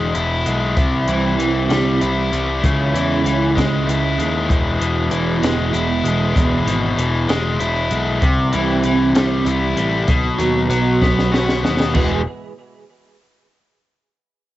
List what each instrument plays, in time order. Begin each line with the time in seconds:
Already playing: picked electric bass E1, overdriven electric guitar E2 B2 E3 G#3 E4, clean electric guitar E2 B2 E3 G#3 B3 E4
0.14 picked electric bass E1, overdriven electric guitar E4, closed hi-hat
0.46 picked electric bass B1, overdriven electric guitar G#3, closed hi-hat
0.75 picked electric bass C2, clean electric guitar C3 E3 G3 C4 E4, overdriven electric guitar C3, kick, closed hi-hat
1.08 picked electric bass C2, overdriven electric guitar E3, closed hi-hat
1.38 picked electric bass C2, overdriven electric guitar E3, closed hi-hat
1.69 picked electric bass C2, overdriven electric guitar G3, snare, closed hi-hat
2.01 picked electric bass C2, overdriven electric guitar E4, closed hi-hat
2.32 picked electric bass C2, overdriven electric guitar G3, closed hi-hat
2.62 picked electric bass C#2, clean electric guitar C#3 E3 G#3 C#4 E4, overdriven electric guitar C#3, kick, closed hi-hat
2.94 picked electric bass E2, overdriven electric guitar E3, closed hi-hat
3.24 picked electric bass C#2, overdriven electric guitar E3, closed hi-hat
3.55 picked electric bass C#2, overdriven electric guitar G#3, kick, snare, closed hi-hat
3.87 picked electric bass C#2, overdriven electric guitar E4, closed hi-hat
4.18 picked electric bass D#2, overdriven electric guitar G#3, closed hi-hat
4.48 picked electric bass E1, overdriven electric guitar E2, clean electric guitar E2 B2 E3 G#3, kick, closed hi-hat
4.52 clean electric guitar B3 E4
4.80 picked electric bass E1, overdriven electric guitar B2, closed hi-hat
5.10 picked electric bass E1, overdriven electric guitar E3, closed hi-hat
5.42 picked electric bass E1, overdriven electric guitar G#3, snare, closed hi-hat
5.73 picked electric bass E1, overdriven electric guitar E4, closed hi-hat
6.04 picked electric bass E1, overdriven electric guitar G#3, closed hi-hat
6.34 picked electric bass E1, overdriven electric guitar E2, kick, closed hi-hat
6.66 picked electric bass G#1, overdriven electric guitar B2, closed hi-hat
6.97 picked electric bass E1, overdriven electric guitar E3, closed hi-hat
7.28 picked electric bass E1, overdriven electric guitar G#3, snare, closed hi-hat
7.60 picked electric bass E1, overdriven electric guitar E4, closed hi-hat
7.91 picked electric bass B1, overdriven electric guitar G#3, closed hi-hat
8.21 picked electric bass C2, clean electric guitar C3 E3 G3 C4 E4, overdriven electric guitar C3, kick, closed hi-hat
8.52 picked electric bass C2, overdriven electric guitar E3, closed hi-hat
8.84 picked electric bass C2, overdriven electric guitar E3, closed hi-hat
9.14 picked electric bass C2, overdriven electric guitar G3, snare, closed hi-hat
9.46 picked electric bass C2, overdriven electric guitar E4, closed hi-hat
9.77 picked electric bass A1, overdriven electric guitar G3, closed hi-hat
10.07 picked electric bass B1, overdriven electric guitar B2, clean electric guitar F#3 B3 D#4 F#4, kick, closed hi-hat
10.38 picked electric bass D#2, overdriven electric guitar F#3, closed hi-hat
10.69 picked electric bass B1, overdriven electric guitar F#3, closed hi-hat
11.01 picked electric bass B1, overdriven electric guitar B3, kick, snare
11.19 snare
11.32 picked electric bass B1, overdriven electric guitar F#4, snare
11.49 snare
11.63 picked electric bass D#2, overdriven electric guitar B3, snare
11.80 snare
11.94 picked electric bass E1, overdriven electric guitar E2 B2 E3 G#3 B3 G#4, clean electric guitar E2 B2 E3 G#3 B3 G#4, kick, crash